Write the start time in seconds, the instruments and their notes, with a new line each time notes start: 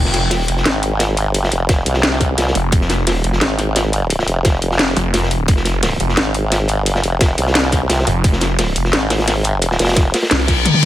Already playing: detuned saw bass F1
0.05 snare
0.14 snare, closed hi-hat
0.31 snare, closed hi-hat, open hi-hat
0.48 detuned saw bass F1, closed hi-hat
0.57 snare
0.66 wobble bass G#1, snare, closed hi-hat
0.83 closed hi-hat
1.00 snare, closed hi-hat
1.17 closed hi-hat
1.26 wobble bass G1
1.34 closed hi-hat
1.44 snare
1.51 wobble bass F1, closed hi-hat
1.69 kick, snare, closed hi-hat
1.86 wobble bass C2, closed hi-hat
1.94 snare
2.03 snare, closed hi-hat
2.12 snare
2.21 kick, snare, closed hi-hat
2.38 wobble bass C2, snare, closed hi-hat
2.47 snare
2.55 detuned saw bass F1, closed hi-hat
2.72 detuned saw bass F1, kick, closed hi-hat
2.81 snare
2.90 snare, closed hi-hat
3.07 snare, closed hi-hat, open hi-hat
3.24 detuned saw bass F1, closed hi-hat
3.33 snare
3.41 wobble bass G#1, snare, closed hi-hat
3.59 snare, closed hi-hat
3.76 snare, closed hi-hat
3.93 closed hi-hat
4.10 closed hi-hat
4.19 snare
4.28 wobble bass F1, closed hi-hat
4.45 kick, snare, closed hi-hat
4.62 wobble bass F1, closed hi-hat
4.71 snare
4.79 snare, closed hi-hat
4.88 snare
4.96 detuned saw bass F1, closed hi-hat
5.14 detuned saw bass F1, snare, closed hi-hat
5.23 snare
5.31 closed hi-hat
5.48 detuned saw bass F1, kick, closed hi-hat
5.56 snare
5.65 snare, closed hi-hat
5.83 snare, closed hi-hat, open hi-hat
6.00 detuned saw bass F1, closed hi-hat
6.09 snare
6.17 wobble bass G#1, snare, closed hi-hat
6.34 closed hi-hat
6.52 snare, closed hi-hat
6.68 closed hi-hat
6.77 wobble bass G1
6.86 closed hi-hat
6.95 snare
7.03 wobble bass F1, closed hi-hat
7.21 kick, snare, closed hi-hat
7.38 wobble bass C2, closed hi-hat
7.47 snare
7.55 snare, closed hi-hat
7.63 snare
7.72 kick, snare, closed hi-hat
7.89 wobble bass C2, snare, closed hi-hat
7.99 snare
8.07 detuned saw bass F1, closed hi-hat
8.24 detuned saw bass F1, kick, closed hi-hat
8.32 snare
8.41 snare, closed hi-hat
8.59 snare, closed hi-hat, open hi-hat
8.76 detuned saw bass F1, closed hi-hat
8.85 snare
8.93 wobble bass G#1, snare, closed hi-hat
9.10 snare, closed hi-hat, open hi-hat
9.19 snare, open hi-hat
9.27 snare, closed hi-hat, open hi-hat
9.44 closed hi-hat
9.62 closed hi-hat
9.71 snare
9.79 wobble bass F1, snare, closed hi-hat, open hi-hat
9.84 snare, open hi-hat
9.88 snare, open hi-hat
9.92 snare, open hi-hat
9.97 kick, snare, closed hi-hat
10.14 snare, closed hi-hat, open hi-hat
10.22 snare, open hi-hat
10.31 detuned saw bass C2, snare, closed hi-hat, reverse cymbal
10.39 snare, open hi-hat
10.48 kick, snare, closed hi-hat, open hi-hat
10.65 closed hi-hat, high tom
10.74 high tom